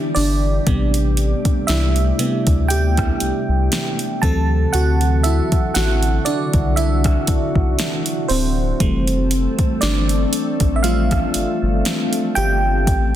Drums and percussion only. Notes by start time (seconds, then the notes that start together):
0.16 open hi-hat
0.67 kick, closed hi-hat
0.94 closed hi-hat
1.17 closed hi-hat
1.45 kick, closed hi-hat
1.68 snare, closed hi-hat
1.96 closed hi-hat
2.19 closed hi-hat
2.47 kick, closed hi-hat
2.70 closed hi-hat
2.97 kick, cross-stick, closed hi-hat
3.20 closed hi-hat
3.72 snare, closed hi-hat
3.99 closed hi-hat
4.23 kick, closed hi-hat
4.74 closed hi-hat
5.01 closed hi-hat
5.24 closed hi-hat
5.52 kick, closed hi-hat
5.75 snare, closed hi-hat
6.03 closed hi-hat
6.26 closed hi-hat
6.54 kick, closed hi-hat
6.77 closed hi-hat
7.04 kick, cross-stick, closed hi-hat
7.27 kick, closed hi-hat
7.55 kick
7.79 snare, closed hi-hat
8.06 closed hi-hat
8.29 open hi-hat
8.80 kick, closed hi-hat
9.07 closed hi-hat
9.31 closed hi-hat
9.59 kick, closed hi-hat
9.82 snare, closed hi-hat
10.09 closed hi-hat
10.33 closed hi-hat
10.60 kick, closed hi-hat
10.84 closed hi-hat
11.11 kick, cross-stick, closed hi-hat
11.34 closed hi-hat
11.85 snare, closed hi-hat
12.13 closed hi-hat
12.36 closed hi-hat
12.87 kick, closed hi-hat